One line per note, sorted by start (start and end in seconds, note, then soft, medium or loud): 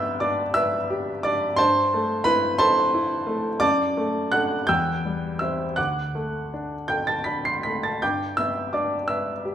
0.00 1.55 G2 medium
0.00 0.41 B3 medium
0.00 0.18 E5 medium
0.00 1.61 G5 medium
0.00 0.20 D6 medium
0.00 0.20 E6 loud
0.00 1.61 G6 medium
0.20 0.77 D4 soft
0.20 0.53 D5 medium
0.20 0.55 D6 medium
0.54 1.11 B4 medium
0.54 1.20 E5 medium
0.54 1.24 E6 loud
0.90 1.45 G4 medium
1.23 1.59 D4 medium
1.23 1.56 D5 medium
1.23 1.58 D6 medium
1.56 3.59 G2 medium
1.56 2.23 C5 medium
1.56 2.23 A5 medium
1.56 2.26 C6 loud
1.94 2.47 A3 medium
2.24 2.80 E4 medium
2.24 2.57 B4 medium
2.24 2.59 B5 loud
2.58 3.14 A4 medium
2.58 3.58 C5 medium
2.58 3.58 A5 medium
2.58 3.62 C6 loud
2.94 3.49 E4 medium
3.27 3.62 A3 medium
3.60 4.65 F#2 medium
3.60 4.28 D5 medium
3.60 4.28 A5 medium
3.60 4.31 D6 loud
3.97 4.54 A3 medium
4.32 4.65 D4 soft
4.32 4.66 A4 medium
4.32 4.66 F#5 medium
4.32 4.68 F#6 loud
4.67 5.74 E2 medium
4.67 5.36 G5 medium
4.67 5.37 E6 medium
4.67 5.40 G6 loud
5.05 5.63 G3 soft
5.39 5.74 C4 soft
5.39 5.74 C5 soft
5.39 5.75 E5 medium
5.39 5.77 E6 medium
5.76 7.98 D2 soft
5.76 6.85 F#5 medium
5.76 6.86 D6 medium
5.76 6.89 F#6 medium
6.15 6.75 A3 soft
6.54 7.13 D4 soft
6.88 7.50 A4 soft
6.88 7.07 G5 medium
6.88 7.07 G6 medium
7.07 7.26 A5 medium
7.07 7.26 A6 medium
7.24 7.87 D4 soft
7.24 7.44 B5 soft
7.24 7.44 B6 medium
7.45 7.64 C6 soft
7.45 7.64 C7 medium
7.63 8.03 A3 soft
7.63 7.82 B5 soft
7.63 7.83 B6 medium
7.83 8.01 A5 medium
7.83 8.02 A6 medium
8.02 9.55 G2 medium
8.02 8.36 G5 medium
8.02 8.36 D6 medium
8.02 8.38 G6 medium
8.37 8.96 B3 soft
8.37 8.72 E5 medium
8.37 8.73 E6 medium
8.73 9.31 D4 soft
8.73 9.07 D5 soft
8.73 9.09 D6 medium
9.08 9.55 B4 soft
9.08 9.55 E5 medium
9.08 9.55 E6 medium
9.45 9.55 G4 soft